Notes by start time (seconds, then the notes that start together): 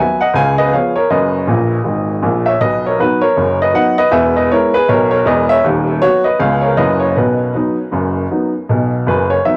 Already playing: G#5
0.00 F#3 B3 B4 E5
0.21 D#5 F#5
0.34 C#2 C#3 F5 G#5
0.58 B4 D#5
0.72 F3 B3 G#4 C#5 F5
0.96 A#4 C#5
1.10 F#1 F#2 B4 D#5
1.47 A#1 A#2
1.84 G#1 G#2
2.22 A#1 A#2
2.46 C#5 E5
2.60 B1 B2 B4 D#5
2.86 A#4 C#5
2.99 F#3 B3 D#4 F#4 B4
3.21 A#4 C#5
3.36 F#1 F#2
3.62 B4 D#5
3.74 F#3 B3 D#4 D#5 F#5
3.98 B4 D#5
4.11 E1 E2 B4 E5
4.37 B4 D#5
4.51 G#3 B3 E4 A#4 C#5
4.74 G#4 B4
4.89 B1 B2 A#4 C#5
5.11 A#4 C#5
5.25 E1 E2 B4 D#5
5.49 C#5 E5
5.64 D#1 D#2
6.01 F#3 B3 F#4 C#5
6.24 B4 D#5
6.39 C#2 C#3 G#3 B3 C#4 C#5 F5
6.62 A#4 C#5
6.77 F#1 F#2 F#3 A#3 E4 B4 D#5
7.00 C#5
7.11 C#5
7.17 B1 B2 F#4 B4
7.55 F#3 B3 D#4
7.92 F#1 F#2
8.31 F#3 B3 D#4
8.69 B1 B2
9.06 F#1 F#2 B4
9.30 C#5
9.45 F#3 B3 D#4 E5